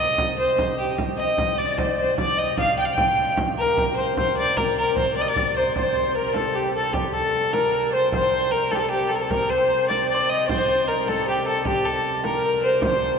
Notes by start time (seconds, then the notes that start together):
Already playing: C3 G3 D#5
0.18 frame drum
0.39 C5
0.59 frame drum
0.78 G4, frame drum
0.98 C3 G3, frame drum
1.18 D#5, frame drum
1.38 frame drum
1.57 D5
1.78 C5, frame drum
1.98 C5, frame drum
2.17 D5, frame drum
2.37 D#5, frame drum
2.57 F5, frame drum
2.77 G5
2.85 F5
2.89 G5
2.97 frame drum
3.17 frame drum
3.37 frame drum
3.58 A#4, frame drum
3.76 A#4, frame drum
3.96 C5
4.16 C5, frame drum
4.37 D5, frame drum
4.57 A#4, frame drum
4.77 A#4
4.97 C5, frame drum
5.16 D5
5.21 D#5
5.28 D5
5.36 frame drum
5.56 C5, frame drum
5.74 C3 G3 C5, frame drum
5.83 D5
5.88 C5
6.11 C5
6.15 A#4, frame drum
6.34 A4, frame drum
6.54 G4, frame drum
6.74 A4
6.93 G4, frame drum
7.13 A4
7.33 frame drum
7.53 A#4, frame drum
7.74 frame drum
7.89 C5 D5
8.12 C5, frame drum
8.32 C5
8.51 A#4, frame drum
8.71 G4 A4, frame drum
8.79 A4
8.91 G4, frame drum
9.09 A4
9.15 A#4
9.21 A4
9.29 A#4, frame drum
9.50 C5, frame drum
9.70 frame drum
9.88 D5, frame drum
10.08 D5, frame drum
10.14 C5
10.19 D5
10.29 D#5, frame drum
10.48 C3 G3 C5, frame drum
10.87 A#4, frame drum
11.07 A4, frame drum
11.27 G4, frame drum
11.46 A4
11.65 G4, frame drum
11.85 A4
12.05 frame drum
12.23 A#4, frame drum
12.44 A#4, frame drum
12.63 C5
12.82 C5, frame drum